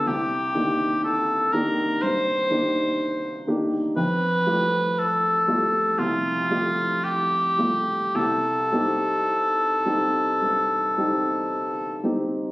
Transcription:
<<
  \new Staff \with { instrumentName = "Cor anglais" } { \time 4/4 \key c \major \tempo 4 = 59 g'4 a'8 bes'8 c''4. r8 | b'4 a'4 f'4 g'4 | a'2.~ a'8 r8 | }
  \new Staff \with { instrumentName = "Grand piano" } { \time 4/4 \key c \major c,8 <ees bes d' g'>4 <ees bes d' g'>8 g,8 <ees bes d' g'>4 <ees bes d' g'>8 | f,8 <g a f' g'>4 <g a f' g'>8 c,8 <g a f' g'>4 <g a f' g'>8 | c,8 <g c' ees' g'>4 <g c' ees' g'>8 g,8 <g c' ees' g'>4 <g c' ees' g'>8 | }
>>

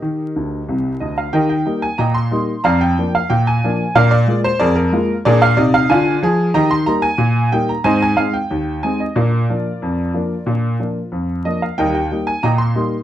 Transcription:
<<
  \new Staff \with { instrumentName = "Upright piano" } { \time 2/4 \key ees \major \tempo 4 = 92 <g' bes' ees''>4. ees''16 f''16 | <bes' ees'' g''>16 g''8 aes''16 <ees'' g'' bes''>16 c'''8. | <d'' f'' bes''>16 g''8 f''16 g''16 aes''8. | <bes' d'' f''>16 d''8 c''16 <aes' bes' d''>16 bes'8. |
<aes' bes' d''>16 f''16 d''16 f''16 <d'' f'' aes''>8 r8 | <ees'' g'' bes''>16 c'''16 bes''16 aes''8. g''16 bes''16 | <c'' ees'' aes''>16 aes''16 f''16 g''8. aes''16 ees''16 | <f' bes' d''>2~ |
<f' bes' d''>4 r8 ees''16 f''16 | <bes' ees'' g''>16 g''8 aes''16 <ees'' g'' bes''>16 c'''8. | }
  \new Staff \with { instrumentName = "Upright piano" } { \clef bass \time 2/4 \key ees \major ees8 <d, d>8 <c, c>8 <d, d>8 | <ees g'>8 <g bes ees'>8 bes,8 <g bes ees'>8 | f,8 <f bes d'>8 bes,8 <f bes d'>8 | <bes, d'>8 <aes bes f'>8 f,8 <aes bes f'>8 |
<bes, d'>8 <c ees'>8 <d f'>8 <f aes'>8 | <ees g'>8 <g bes ees'>8 bes,8 <g bes ees'>8 | <aes, c'>8 <aes c' ees'>8 ees,8 <aes c' ees'>8 | <bes, d'>8 <f bes d'>8 f,8 <f bes d'>8 |
<bes, d'>8 <f bes d'>8 f,8 <f bes d'>8 | <ees, g>8 <g bes ees'>8 bes,8 <g bes ees'>8 | }
>>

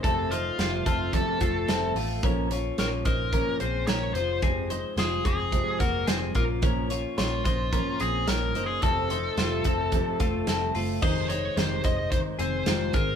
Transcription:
<<
  \new Staff \with { instrumentName = "Lead electric guitar" } { \time 4/4 \key f \phrygian \tempo 4 = 109 a'8 f'4 f'8 a'4. r8 | r4 bes'8 bes'4 c''8 des''8 c''8 | r4 aes'8 aes'4 bes'8 c''8 bes'8 | r4 f'8 f'4 aes'8 \tuplet 3/2 { bes'4 aes'8 } |
a'2.~ a'8 r8 | c''8 des''8 c''8 ees''8 c''8 c''4 bes'8 | }
  \new Staff \with { instrumentName = "Clean electric guitar" } { \time 4/4 \key f \phrygian <c' a'>8 <ees' c''>8 <f' c''>8 <c' a'>4 <a f'>8 <c' a'>8 <a f'>8 | <des' bes'>8 <f' des''>8 <f' des''>8 <ees' c''>8 <des' bes'>8 <c' aes'>8 <des' bes'>8 <f' c''>8 | <c' aes'>8 <ees' c''>8 <f' c''>8 <c' aes'>4 <bes ges'>8 <c' aes'>8 <bes f'>8 | <des' bes'>8 <f' des''>8 <f' des''>8 <ees' c''>8 <des' bes'>8 <c' aes'>8 <des' bes'>8 <ees' c''>8 |
<c' a'>8 <ees' c''>8 <f' c''>8 <c' a'>4 <a f'>8 <c' a'>8 <a f'>8 | <aes' ees''>8 <ees' c''>4 <ees' c''>4 <c' aes'>8 <aes f'>8 <c' aes'>8 | }
  \new Staff \with { instrumentName = "Steel-string acoustic guitar" } { \clef bass \time 4/4 \key f \phrygian <f, c f a c'>8 <f a c'>8 <c f a c'>8 <f a c'>8 <f, c f a c'>8 <f a c'>8 <c f a c'>8 <f a c'>8 | <bes, f bes des'>8 <f bes des'>8 <bes, f bes des'>8 <f bes des'>8 <bes, f bes des'>8 <f bes des'>8 <bes, f bes des'>8 <f aes c'>8 | <f, c f aes c'>8 <f aes c'>8 <c f aes c'>8 <f aes c'>8 <f, c f aes c'>8 <f aes c'>8 <c f aes c'>8 <f bes des'>8 | <bes, f bes des'>8 <f bes des'>8 <bes, f bes des'>8 <f bes des'>8 <bes, f bes des'>8 <f bes>8 <bes, f bes des'>8 <f bes des'>8 |
<f, c f a c'>8 <f a c'>8 <c f a c'>8 <f a c'>8 <f, c f a c'>8 <a c'>8 <c f a c'>8 <f a c'>8 | <f, c ees aes c'>8 <ees aes c'>8 <f, c ees aes c'>8 <ees aes c'>8 <c ees aes c'>8 <ees aes c'>8 <f, c ees aes c'>8 <ees aes c'>8 | }
  \new Staff \with { instrumentName = "Picked electric bass" } { \clef bass \time 4/4 \key f \phrygian f,,4 f,,8 f,,8. r16 f,,8 f,,8 a,,8 | bes,,4 bes,,8 bes,,8. r16 bes,,8 bes,,8 f,,8~ | f,,4 f,,8 f,,8. r16 f,,8 f,,8 bes,,8~ | bes,,4 bes,,8 bes,,8. r16 bes,,8 bes,,8 ges,,8 |
f,,4 f,,8 f,,8. r16 f,,8 f,,8 ges,,8 | f,,4 f,,8 f,,8. r16 f,,8 f,,8 aes,,8 | }
  \new DrumStaff \with { instrumentName = "Drums" } \drummode { \time 4/4 <hh bd>8 hh8 <hh sn>8 <hh bd>8 <hh bd>8 <hh bd>8 <hh sn>8 hho8 | <hh bd>8 hh8 <hh sn>8 <hh bd>8 <hh bd>8 hh8 <hh sn>8 hh8 | <hh bd>8 hh8 <hh sn>8 <hh bd>8 <hh bd>8 <hh bd>8 <hh sn>8 <hh bd>8 | <hh bd>8 hh8 <hh sn>8 <hh bd>8 <hh bd>8 hh8 <hh sn>8 hh8 |
<hh bd>8 hh8 <hh sn>8 <hh bd>8 <hh bd>8 <hh bd>8 <hh sn>8 hho8 | <cymc bd>8 hh8 <hh sn>8 <hh bd>8 <hh bd>8 hh8 <hh sn>8 <hh bd>8 | }
>>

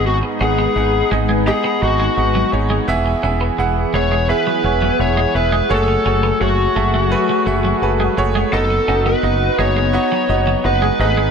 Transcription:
<<
  \new Staff \with { instrumentName = "Lead electric guitar" } { \time 4/4 \key b \mixolydian \tempo 4 = 85 fis'8 gis'4 r8 gis'8 fis'4 r8 | r4. cis''8 b'4 cis''8 b'8 | a'4 fis'2~ fis'8 r8 | a'8. b'8. cis''4. b'8 b'8 | }
  \new Staff \with { instrumentName = "Grand piano" } { \time 4/4 \key b \mixolydian << { gis,4 r2. | e4. r2 r8 | r2 r8 cis'''8 a''16 gis''16 e''8 | r2. r8 gis,8 | } \\ { <b dis' gis' dis''>8 <b dis' gis' fis''>8 <b dis' gis' fis''>8 <b dis' gis' dis''>8 <b dis' gis' dis''>8 <b dis' gis' dis''>8 <b dis' gis' fis''>8 <b dis' gis' cis''>8 | <b e' gis' e''>8 <b e' gis' e''>8 <b e' gis' fis''>8 <b e' gis' fis''>8 <b e' gis' e''>8 <b e' gis' cis''>8 <b e' gis' e''>8 <b e' gis' e''>8 | <a fis' gis' cis''>8 <a fis' gis' cis''>8 <a fis' gis' cis''>8 <a fis' gis' e''>8 <a fis' gis' b'>8 <a fis' gis' e''>8 <a fis' gis' b'>8 <a fis' gis' cis''>8 | <b dis' fis' dis''>8 <b dis' fis' dis''>8 <b dis' fis' dis''>8 <b dis' fis' dis''>8 <b dis' fis' dis''>8 <b dis' fis' dis''>8 <b dis' fis' dis''>8 <a b dis' gis' dis''>8 | } >> }
  \new Staff \with { instrumentName = "Analog synth pad" } { \time 4/4 \key b \mixolydian << { <gis b'>1 | <e gis'>1 | <fis fis'>1 | <b fis'>2.~ <b fis'>8 <gis b'>8 | } \\ { dis'1 | b1 | a1 | dis'1 | } >> }
  \new Staff \with { instrumentName = "Clean electric guitar" } { \clef bass \time 4/4 \key b \mixolydian r8 cis'16 b16 r8 gis16 gis16 r16 b16 r16 gis16 r16 fis16 r16 gis16 | r8 cis'16 b16 r8 gis16 gis16 r16 fis16 r16 fis16 r16 gis16 r16 gis16 | r8 cis'16 b16 r8 a16 a16 r16 fis16 r16 fis16 r16 gis16 r16 gis16 | r8 cis'16 b16 r8 gis16 gis16 r16 fis16 r16 fis16 r16 gis16 r16 gis16 | }
  \new Staff \with { instrumentName = "Fretless electric bass" } { \clef bass \time 4/4 \key b \mixolydian gis,,8 gis,,8 gis,,8 gis,,8. r16 gis,,8 gis,,8 gis,,8 | e,,8 e,,8 e,,8 e,,8. r16 e,,8 e,,8 e,,8 | fis,,8 fis,,8 fis,,8 fis,,8. r16 fis,,8 fis,,8 fis,,8 | fis,,8 fis,,8 fis,,8 fis,,8. r16 fis,,8 fis,,8 gis,,8 | }
>>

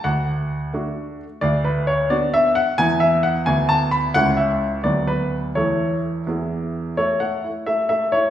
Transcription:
<<
  \new Staff \with { instrumentName = "Grand piano" } { \time 6/8 \key d \major \tempo 4. = 87 fis''2~ fis''8 r8 | \key a \major d''8 b'8 cis''8 d''8 e''8 fis''8 | gis''8 e''8 fis''8 gis''8 a''8 b''8 | fis''8 e''4 d''8 b'4 |
cis''4. r4. | cis''8 fis''4 e''8 e''8 cis''8 | }
  \new Staff \with { instrumentName = "Grand piano" } { \time 6/8 \key d \major d,4. <a d' fis'>4. | \key a \major d,4. <b d' fis'>4. | <e, b e'>4. <d, b e'>4. | <cis, a cis' e'>4. <d, fis b fis'>4. |
<e, e a a'>4. <e, e b gis'>4. | a8 a8 e'8 a8 a8 e'8 | }
>>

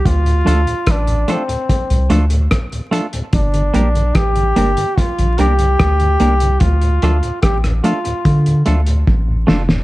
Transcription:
<<
  \new Staff \with { instrumentName = "Trombone" } { \time 4/4 \key d \phrygian \tempo 4 = 73 f'4 d'8 c'4 r4. | d'4 g'4 f'8 g'4. | f'4 g'8 f'4 r4. | }
  \new Staff \with { instrumentName = "Clean electric guitar" } { \time 4/4 \key d \phrygian r8 <a d' f' a'>8 r8 <a d' f' a'>8 r8 <a d' f' a'>8 r8 <a d' f' a'>8 | r8 <bes d' g' bes'>8 r8 <bes d' g' bes'>8 r8 <bes d' g' bes'>8 r8 <bes d' g' bes'>8 | r8 <a d' f' a'>8 r8 <a d' f' a'>8 r8 <a d' f' a'>8 r8 <a d' f' a'>8 | }
  \new Staff \with { instrumentName = "Tonewheel organ" } { \clef bass \time 4/4 \key d \phrygian << { r8 <f a d'>8 r8 <f a d'>8 r8 <f a d'>8 r8 <f a d'>8 | r8 <g bes d'>8 r8 <g bes d'>8 r8 <g bes d'>8 r8 <g bes d'>8 | r8 <f a d'>8 r8 <f a d'>8 r8 <f a d'>8 r8 <f a d'>8 | } \\ { r16 <d, a,>16 r16 <d, a,>16 r16 <d, a,>16 r16 <d, a,>16 r16 <d, a,>16 r16 <d, a,>16 r16 <d, a,>16 r16 <d, a,>16 | r16 <g, d>16 r16 <g, d>16 r16 <g, d>16 r16 <g, d>16 r16 <g, d>16 r16 <g, d>16 r16 <g, d>16 r16 <g, d>16 | r16 <d, a,>16 r16 <d, a,>16 r16 <d, a,>16 r16 <d, a,>16 r16 <d, a,>16 r16 <d, a,>16 r16 <d, a,>16 r16 <d, a,>16 | } >> }
  \new Staff \with { instrumentName = "Sub bass" } { \clef bass \time 4/4 \key d \phrygian d,8 d,16 r16 a,,8 r8. c,16 d,8 r4 | g,,8 bes,,8 a,,8 g,,16 r8 bes,,16 c,8 d,8 c,8 | d,8 d,16 r16 a,,8 r8 d8 d,8 a,,8 f,,8 | }
  \new DrumStaff \with { instrumentName = "Drums" } \drummode { \time 4/4 <hh bd>16 hh16 hh16 hh16 <hh bd ss>16 hh16 hh16 hh16 <hh bd>16 hh16 hh16 hh16 <hh bd ss>16 hh16 hh16 hh16 | <hh bd>16 hh16 hh16 hh16 <hh bd ss>16 hh16 hh16 hh16 <hh bd>16 hh16 hh16 hh16 <hh bd ss>16 hh16 hh16 hh16 | <hh bd>16 hh16 hh16 hh16 <hh bd ss>16 <hh ss>16 hh16 hh16 <hh bd>16 hh16 hh16 hh16 bd8 sn16 sn16 | }
>>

